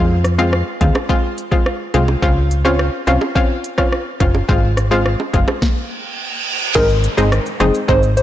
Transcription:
Already playing: analog synth bass F2, synth pluck G#3 C4 F4
0.24 cross-stick, closed hi-hat
0.38 synth pluck G#3 C4 F4, high bongo
0.53 cross-stick
0.81 analog synth bass D#2, synth pluck G#3 C4 F4, kick, closed hi-hat
0.95 cross-stick, high bongo
1.09 synth pluck G#3 C4 F4, kick
1.38 closed hi-hat
1.52 synth pluck G#3 C4 F4, kick
1.66 cross-stick
1.94 analog synth bass C2, synth pluck G#3 C4 F4, closed hi-hat, low bongo
2.08 high bongo
2.22 analog synth bass C#2, synth pluck C4 C#4 F4, kick
2.51 closed hi-hat
2.65 synth pluck C4 C#4 F4, high bongo
2.79 cross-stick
3.07 analog synth bass C2, synth pluck C4 C#4 F4, cross-stick, closed hi-hat
3.21 high bongo
3.35 synth pluck C4 C#4 F4, kick
3.64 closed hi-hat
3.78 synth pluck C4 C#4 F4, kick, cross-stick
3.92 cross-stick
4.20 analog synth bass F#1, synth pluck C4 C#4 F4, kick, closed hi-hat, low bongo
4.35 high bongo
4.49 analog synth bass G#1, synth pluck G#3 C4 F4, kick
4.77 cross-stick, closed hi-hat
4.91 synth pluck G#3 C4 F4, high bongo
5.06 cross-stick
5.20 high bongo
5.33 analog synth bass F#1, synth pluck G#3 C4 F4, kick, closed hi-hat
5.48 cross-stick, high bongo
5.62 kick, snare, reverse cymbal
6.75 analog synth bass G#1, synth pluck G#3 C4 D#4, soft synth lead A#4, kick, crash, downlifter, shaker
6.89 shaker
7.04 closed hi-hat, shaker
7.17 analog synth bass G#1, synth pluck G#3 C4 D#4, soft synth lead G#4, shaker
7.32 cross-stick, shaker
7.46 shaker
7.60 analog synth bass F#1, synth pluck G#3 C4 D#4, soft synth lead G#4, cross-stick, closed hi-hat, shaker
7.74 shaker
7.88 analog synth bass G#1, synth pluck G#3 C4 D#4, soft synth lead C5, kick, shaker
8.03 shaker
8.17 soft synth lead C5, closed hi-hat, shaker

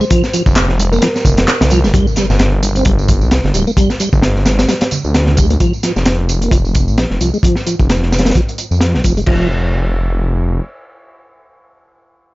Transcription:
0.01 tonewheel organ G#3, tambourine
0.10 tonewheel organ F3, kick, closed hi-hat, tambourine
0.24 snare, tambourine
0.33 tonewheel organ F3, closed hi-hat, tambourine
0.46 detuned saw bass F1, kick, tambourine, low conga
0.55 snare, clap, closed hi-hat, tambourine
0.69 snare
0.79 closed hi-hat, tambourine, high conga
0.92 tonewheel organ A#3, kalimba A#4, tambourine
1.02 tonewheel organ F3, snare, closed hi-hat, tambourine
1.16 snare, tambourine
1.25 detuned saw bass F1, kick, closed hi-hat, tambourine, low conga
1.37 detuned saw bass F1, snare, closed hi-hat, tambourine
1.48 snare, clap, closed hi-hat, tambourine
1.61 detuned saw bass C2, snare, closed hi-hat, tambourine, low conga
1.70 tonewheel organ F3, snare, closed hi-hat, tambourine, high conga
1.84 detuned saw bass F1, tonewheel organ G#3, snare, tambourine
1.94 tonewheel organ G3, kick, closed hi-hat, tambourine, impact
2.07 tambourine
2.16 tonewheel organ G3, snare, closed hi-hat, tambourine
2.30 detuned saw bass G1, snare, tambourine, low conga
2.39 snare, closed hi-hat, tambourine
2.63 closed hi-hat, tambourine, high conga
2.75 tonewheel organ C4, closed hi-hat, tambourine
2.85 detuned saw bass G1, tonewheel organ G3, kick, closed hi-hat, tambourine
2.99 tambourine
3.08 kick, closed hi-hat, tambourine, low conga
3.21 detuned saw bass C2, tambourine
3.31 snare, closed hi-hat, tambourine
3.44 detuned saw bass G1, snare, low conga
3.54 detuned saw bass D1, tonewheel organ G3, closed hi-hat, tambourine, high conga
3.67 tonewheel organ A#3, tambourine
3.77 tonewheel organ G3, kick, closed hi-hat, tambourine
3.90 snare, tambourine
4.00 tonewheel organ G3, closed hi-hat, tambourine
4.13 detuned saw bass G1, kick, tambourine, low conga
4.22 snare, closed hi-hat, tambourine
4.36 snare
4.46 snare, closed hi-hat, tambourine, high conga
4.59 tonewheel organ C4, snare, closed hi-hat, tambourine
4.68 tonewheel organ G3, snare, closed hi-hat, tambourine
4.81 snare, closed hi-hat, tambourine
4.91 closed hi-hat, tambourine, low conga
5.04 detuned saw bass D2, tambourine
5.14 snare, closed hi-hat, tambourine
5.26 snare, low conga
5.37 tonewheel organ G3, kick, closed hi-hat, tambourine, high conga
5.50 tonewheel organ A#3, closed hi-hat, tambourine
5.60 tonewheel organ F3, kick, closed hi-hat, tambourine
5.73 tambourine
5.83 tonewheel organ F3, snare, closed hi-hat, tambourine
5.96 detuned saw bass F1, snare, tambourine
6.05 snare, closed hi-hat, tambourine
6.29 closed hi-hat, tambourine
6.42 tonewheel organ A#3, closed hi-hat, tambourine
6.51 detuned saw bass F1, tonewheel organ F3, kick, closed hi-hat, tambourine
6.65 tambourine
6.75 kick, closed hi-hat, tambourine
6.88 detuned saw bass A#1, tambourine
6.98 snare, closed hi-hat, tambourine
7.11 detuned saw bass F1, snare
7.20 detuned saw bass C2, tonewheel organ F3, closed hi-hat, tambourine
7.34 tonewheel organ G#3, tambourine
7.43 tonewheel organ F3, kick, closed hi-hat, tambourine
7.56 snare, tambourine
7.66 tonewheel organ F3, closed hi-hat, tambourine
7.79 detuned saw bass F1, kick, tambourine
7.89 snare, closed hi-hat, tambourine
8.03 snare
8.12 snare, closed hi-hat, tambourine
8.19 snare, closed hi-hat
8.25 tonewheel organ A#3, snare, closed hi-hat, tambourine
8.30 snare, closed hi-hat
8.35 tonewheel organ F3, kick, closed hi-hat, tambourine
8.49 closed hi-hat, tambourine
8.58 closed hi-hat, tambourine
8.71 detuned saw bass F2, tambourine
8.81 snare, closed hi-hat, tambourine
8.94 detuned saw bass A#1, snare
9.04 detuned saw bass F1, tonewheel organ F3, kick, closed hi-hat, tambourine
9.17 tonewheel organ G#3, closed hi-hat, tambourine
9.26 detuned saw bass F1, tonewheel organ F3, kick, crash

